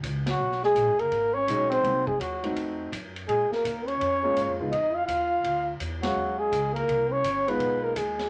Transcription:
0.03 0.38 C#2 medium
0.03 kick soft
0.03 hi-hat pedal medium
0.03 ride medium
0.26 0.61 F#3 medium
0.26 0.62 F#4 medium
0.26 snare medium
0.26 ride medium
0.39 0.74 B1 medium
0.52 snare soft
0.63 1.00 G#3 medium
0.63 1.02 G#4 medium
0.63 snare soft
0.75 0.87 A#1 medium
0.75 kick soft
0.75 hi-hat pedal medium
0.75 ride medium
0.87 0.99 G#1 medium
0.98 1.11 F#1 medium
0.98 1.36 A#3 medium
0.98 1.36 A#4 medium
0.98 ride soft
1.12 1.46 G#1 medium
1.12 kick soft
1.12 ride medium
1.34 1.69 C#4 medium
1.34 1.70 C#5 loud
1.47 1.82 B1 medium
1.47 1.82 F#3 medium
1.47 1.84 G#3 medium
1.47 1.85 C#4 medium
1.47 1.84 D#4 medium
1.47 kick soft
1.47 hi-hat pedal medium
1.47 ride medium
1.70 2.09 C4 medium
1.70 2.09 C5 medium
1.70 ride soft
1.83 2.19 C2 medium
1.83 2.04 F#3 medium
1.83 2.05 A#3 medium
1.83 2.05 C4 medium
1.83 2.05 D#4 medium
1.83 kick soft
1.83 ride soft
2.07 2.18 G#3 medium
2.07 2.20 G#4 medium
2.07 kick medium
2.18 2.55 D#2 medium
2.18 2.52 F#3 medium
2.18 2.54 F#4 medium
2.18 kick soft
2.18 hi-hat pedal soft
2.18 ride medium
2.43 2.89 A3 soft
2.43 2.90 C4 medium
2.43 2.90 D#4 medium
2.43 2.89 F#4 medium
2.43 ride soft
2.56 2.91 F2 medium
2.56 kick soft
2.56 ride medium
2.92 3.27 F#2 medium
2.92 kick soft
2.92 hi-hat pedal soft
2.92 ride medium
3.16 ride soft
3.28 3.50 A#2 medium
3.28 3.50 G#3 medium
3.28 3.50 G#4 medium
3.28 kick soft
3.28 ride medium
3.51 3.87 A#3 medium
3.51 3.89 A#4 medium
3.51 muted upright bass stroke soft
3.51 snare medium
3.65 3.99 D#2 medium
3.65 kick soft
3.65 hi-hat pedal medium
3.65 ride medium
3.86 4.59 C#4 medium
3.86 4.59 C#5 medium
3.86 ride soft
4.01 4.35 F2 medium
4.01 kick soft
4.01 ride medium
4.23 4.57 G#3 medium
4.23 4.57 A#3 medium
4.23 4.57 C#4 medium
4.23 4.58 F4 medium
4.36 4.48 G#2 medium
4.36 kick soft
4.36 hi-hat pedal medium
4.36 ride medium
4.48 4.59 F2 medium
4.59 4.71 C#2 medium
4.59 4.71 G#3 medium
4.59 4.71 B3 soft
4.59 4.71 D#4 medium
4.59 4.71 F4 medium
4.69 5.07 F2 medium
4.69 4.94 D#4 medium
4.69 4.97 D#5 medium
4.69 kick soft
4.69 ride soft
4.92 5.05 F4 medium
4.92 5.06 F5 medium
5.06 5.43 D#2 medium
5.06 5.75 F4 medium
5.06 5.75 F5 medium
5.06 kick soft
5.06 hi-hat pedal medium
5.06 ride medium
5.43 5.79 D2 medium
5.43 kick soft
5.43 ride medium
5.80 6.14 E2 medium
5.80 kick soft
5.80 hi-hat pedal medium
5.80 ride medium
6.00 6.39 F#3 medium
6.00 6.50 F#3 medium
6.00 6.41 F#4 medium
6.00 snare medium
6.00 ride medium
6.05 6.50 G#3 medium
6.05 6.50 C#4 medium
6.05 6.50 F5 medium
6.15 6.50 D#2 medium
6.38 6.72 G#3 medium
6.38 6.74 G#4 medium
6.52 6.87 C#2 medium
6.52 kick soft
6.52 hi-hat pedal medium
6.52 ride medium
6.73 7.12 A#3 medium
6.73 7.14 A#4 medium
6.73 ride soft
6.88 7.23 C2 medium
6.88 kick soft
6.88 ride medium
7.11 7.49 C#4 medium
7.11 7.50 C#5 medium
7.24 7.59 G1 medium
7.24 kick soft
7.24 hi-hat pedal medium
7.24 ride medium
7.47 7.93 G#3 medium
7.47 7.84 B3 medium
7.47 7.94 B3 medium
7.47 7.94 D#4 medium
7.47 7.94 F4 medium
7.47 7.86 B4 medium
7.47 ride soft
7.59 7.94 B1 medium
7.59 kick soft
7.59 ride medium
7.83 7.98 A#3 medium
7.83 7.99 A#4 medium
7.96 8.29 D#2 medium
7.96 8.29 G#3 medium
7.96 8.29 G#4 medium
7.96 kick soft
7.96 hi-hat pedal medium
7.96 ride medium
8.19 snare soft
8.19 ride soft

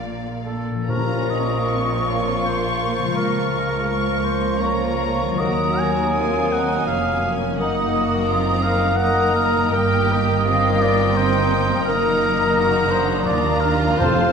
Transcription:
0.00 0.61 A#1 soft
0.00 0.61 A#2 soft
0.00 0.69 A#2 soft
0.00 0.74 F3 soft
0.00 0.61 A#3 soft
0.00 0.87 D4 soft
0.00 0.83 A#4 soft
0.00 0.66 D5 soft
0.00 0.65 F5 soft
0.45 0.91 A4 soft
0.70 3.11 A#2 soft
0.75 3.02 F3 soft
0.79 4.69 C#4 soft
0.84 3.13 A#1 soft
0.84 3.12 A#2 soft
0.84 3.11 A#4 soft
0.88 2.04 A#2 medium
0.88 5.36 F3 soft
0.88 3.13 F3 soft
0.88 1.66 C#4 soft
0.88 4.59 F4 soft
0.88 5.35 A#4 soft
0.88 3.14 A#4 soft
0.88 1.32 A#4 soft
0.88 1.66 A#5 soft
0.88 3.13 C#6 soft
1.30 2.10 D#5 medium
1.69 2.44 C4 soft
1.69 3.89 C#6 soft
2.08 2.47 C#5 soft
2.45 3.15 A#3 soft
2.45 3.15 C5 medium
2.99 5.34 C#3 soft
3.03 5.36 F3 soft
3.08 5.38 F4 soft
3.12 5.34 A#4 soft
3.12 4.26 A#4 medium
3.16 5.35 C#2 soft
3.16 5.36 C#2 soft
3.16 4.60 F3 soft
3.16 3.52 A#3 soft
3.16 4.60 A#4 soft
3.16 4.60 C#6 soft
3.53 3.89 G#3 soft
3.87 6.15 A#3 soft
3.87 4.61 C#6 soft
4.24 4.62 C5 medium
4.61 5.41 F3 soft
4.61 5.39 F4 soft
4.61 5.38 A#4 soft
4.61 4.96 C#5 medium
4.61 5.36 A#5 soft
4.61 5.41 C#6 soft
4.97 5.39 C#5 medium
5.21 7.53 D#3 soft
5.26 9.16 F#3 soft
5.31 7.49 D#4 soft
5.35 6.88 D#2 soft
5.35 7.53 A#4 soft
5.35 5.80 D#5 medium
5.35 6.14 A#5 soft
5.39 7.55 F#3 soft
5.39 7.33 F#3 soft
5.39 6.17 F#4 soft
5.39 9.55 A#4 soft
5.39 7.30 A#4 soft
5.39 7.33 D#6 soft
5.78 6.54 G#5 medium
6.16 6.88 C4 soft
6.16 6.53 F4 soft
6.16 7.56 G#5 soft
6.52 6.88 D#4 soft
6.52 6.86 F#5 medium
6.87 7.58 F1 soft
6.87 7.57 F2 soft
6.87 7.59 A#3 soft
6.87 7.24 C#4 soft
6.87 7.33 F5 medium
7.26 7.60 C#4 soft
7.42 9.67 F#2 soft
7.46 9.58 A#3 soft
7.50 9.63 D#4 soft
7.55 9.72 F#1 soft
7.55 9.72 F#2 soft
7.55 9.67 A#4 soft
7.55 8.64 D#5 medium
7.55 8.94 D#6 soft
7.60 11.84 D#3 soft
7.60 8.27 A#3 soft
7.60 8.95 A#3 medium
7.60 7.95 D#4 soft
7.60 8.94 A#4 soft
7.60 8.29 F#5 soft
7.96 8.30 F#4 soft
8.28 8.97 C4 soft
8.28 8.64 F4 soft
8.28 8.98 A#5 soft
8.63 8.98 D#4 medium
8.63 8.98 F5 medium
8.96 9.71 A#3 medium
8.96 9.71 A#3 soft
8.96 9.71 A#4 medium
8.96 9.33 F#5 medium
8.96 9.71 A#5 soft
8.96 9.71 D#6 soft
9.01 9.72 D#4 soft
9.35 9.71 A#4 medium
9.55 11.82 G2 soft
9.55 11.73 A#3 soft
9.64 11.78 D#4 soft
9.68 11.83 G2 medium
9.68 11.82 A#4 soft
9.68 10.14 A#4 medium
9.68 11.83 A#4 medium
9.68 10.48 G5 medium
9.72 11.84 G1 medium
9.72 10.47 A#3 medium
9.72 11.84 A#3 medium
9.72 10.49 G4 medium
9.72 13.98 A#4 medium
9.72 11.85 D#6 medium
10.13 10.83 D#5 medium
10.48 11.87 C4 medium
10.48 11.18 F4 medium
10.48 11.85 G5 medium
10.82 11.18 D5 medium
11.16 11.86 D#4 medium
11.16 11.84 C5 medium
11.70 13.96 F#2 soft
11.74 13.99 A#3 soft
11.79 14.01 D#4 soft
11.84 13.25 F#1 medium
11.84 13.24 F#2 medium
11.84 13.98 D#3 medium
11.84 12.20 A#3 medium
11.84 14.03 A#4 soft
11.84 12.92 A#4 medium
11.88 13.70 A#3 medium
11.88 12.56 D#4 medium
11.88 13.70 A#4 medium
11.88 12.57 A#5 medium
11.88 13.70 D#6 medium
12.21 12.56 A#3 medium
12.56 12.92 D#4 medium
12.56 13.28 F#4 medium
12.56 13.26 A#5 medium
12.91 14.02 D4 medium
12.91 13.24 C5 medium
13.25 14.01 D#2 medium
13.25 14.02 D#2 medium
13.25 14.32 F4 medium
13.25 13.62 D5 medium
13.25 14.01 A#5 medium
13.60 14.00 A#4 medium
13.84 14.32 F2 medium
13.88 14.32 C4 soft
13.93 14.32 F4 soft
13.97 14.32 F2 medium
13.97 14.32 F3 medium
13.97 14.32 A4 soft
13.97 14.32 A4 medium
13.97 14.32 C5 medium
13.97 14.32 F6 medium
14.01 14.32 F1 medium
14.01 14.32 C4 medium
14.01 14.32 A4 medium
14.01 14.32 A5 soft

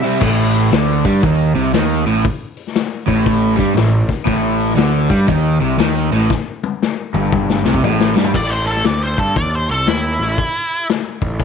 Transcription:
0.02 0.20 C3 medium
0.02 0.21 G3 medium
0.02 0.20 C4 medium
0.02 0.20 E4 medium
0.20 0.68 A1 medium
0.20 0.71 A2 loud
0.20 kick loud
0.20 crash loud
0.54 open hi-hat medium
0.72 1.03 D2 medium
0.72 1.04 D3 medium
0.72 snare loud
0.72 open hi-hat medium
1.04 1.22 G2 medium
1.04 1.22 G3 medium
1.04 kick medium
1.04 open hi-hat medium
1.22 1.53 D#2 medium
1.22 1.54 D#3 loud
1.22 kick loud
1.22 open hi-hat medium
1.55 1.72 C2 medium
1.55 1.73 C3 loud
1.55 open hi-hat medium
1.74 2.04 D#2 loud
1.74 2.05 D#3 loud
1.74 snare loud
1.74 open hi-hat medium
2.06 2.23 A1 medium
2.06 2.24 A2 loud
2.06 open hi-hat medium
2.25 kick loud
2.25 open hi-hat medium
2.57 open hi-hat medium
2.67 snare soft
2.75 snare loud
2.75 open hi-hat medium
3.08 3.55 A1 medium
3.08 3.57 A2 medium
3.08 kick medium
3.08 open hi-hat medium
3.26 kick loud
3.26 open hi-hat medium
3.56 3.75 G2 loud
3.56 3.75 G3 loud
3.56 kick medium
3.56 open hi-hat medium
3.74 4.06 A1 medium
3.74 4.01 A2 medium
3.74 snare loud
3.74 open hi-hat medium
4.09 kick medium
4.09 snare soft
4.09 open hi-hat medium
4.25 4.74 A1 loud
4.25 4.75 A2 loud
4.25 kick loud
4.25 open hi-hat medium
4.60 open hi-hat medium
4.70 snare soft
4.76 5.08 D2 loud
4.76 5.08 D3 medium
4.76 snare loud
4.76 open hi-hat medium
5.10 5.27 G2 medium
5.10 5.28 G3 loud
5.10 kick medium
5.10 open hi-hat medium
5.27 5.59 D#2 medium
5.27 5.60 D#3 loud
5.27 kick loud
5.27 open hi-hat medium
5.61 5.78 C2 medium
5.61 5.78 C3 loud
5.61 open hi-hat medium
5.78 6.09 D#2 loud
5.78 6.11 D#3 loud
5.78 snare loud
5.78 open hi-hat medium
6.11 6.29 A1 medium
6.11 6.30 A2 loud
6.11 snare soft
6.11 open hi-hat medium
6.30 kick loud
6.30 snare medium
6.63 high tom medium
6.82 snare medium
7.14 7.61 G1 medium
7.14 7.64 G2 medium
7.14 mid tom medium
7.32 kick loud
7.32 mid tom medium
7.49 snare medium
7.64 7.81 C2 medium
7.64 7.82 C3 medium
7.64 snare medium
7.74 kick medium
7.84 8.14 A1 loud
7.84 8.15 A2 loud
7.84 floor tom medium
8.00 snare medium
8.15 8.33 G2 medium
8.15 8.33 G3 loud
8.15 snare loud
8.24 floor tom loud
8.34 8.81 A1 medium
8.34 8.51 D5 medium
8.34 kick loud
8.34 crash loud
8.50 8.66 C5 medium
8.66 8.84 A4 medium
8.66 open hi-hat medium
8.76 snare soft
8.85 9.15 D2 medium
8.85 9.02 D5 medium
8.85 snare loud
8.85 open hi-hat medium
9.03 9.19 C5 medium
9.18 9.35 G2 medium
9.18 9.35 A4 medium
9.18 kick medium
9.18 open hi-hat medium
9.36 9.66 D#2 medium
9.36 9.53 D5 medium
9.36 kick loud
9.36 open hi-hat medium
9.55 9.70 C5 medium
9.69 9.86 C2 medium
9.69 9.87 A4 medium
9.69 open hi-hat soft
9.87 10.17 D#2 medium
9.87 10.86 E4 medium
9.87 snare loud
9.87 open hi-hat medium
10.20 10.36 A1 medium
10.20 snare soft
10.20 open hi-hat medium
10.38 kick loud
10.38 open hi-hat medium
10.72 open hi-hat medium
10.89 snare loud
10.89 open hi-hat medium
11.22 11.44 A1 medium
11.22 kick medium
11.22 open hi-hat medium
11.40 kick loud
11.40 open hi-hat medium

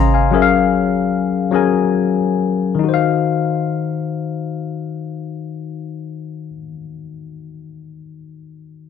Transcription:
0.00 0.34 C#3 medium
0.00 0.32 C#4 medium
0.00 0.34 C5 medium
0.00 0.34 D#5 medium
0.00 0.14 F5 loud
0.00 0.14 G#5 medium
0.00 0.13 A#5 medium
0.00 0.34 C6 medium
0.00 0.34 D#6 medium
0.14 0.41 F5 medium
0.14 0.50 G#5 medium
0.31 1.43 F#3 medium
0.31 1.43 C#4 medium
0.31 1.44 G#4 medium
0.31 1.45 A#4 medium
0.36 0.41 E5 medium
0.42 1.48 F5 loud
1.51 2.72 F#3 medium
1.51 2.72 C#4 medium
1.51 2.73 G#4 medium
1.51 2.74 A#4 medium
1.56 2.74 G#5 medium
2.75 6.49 D#3 medium
2.79 6.54 D#4 medium
2.84 6.58 F#4 medium
2.89 6.63 C5 medium
2.94 6.68 F5 medium

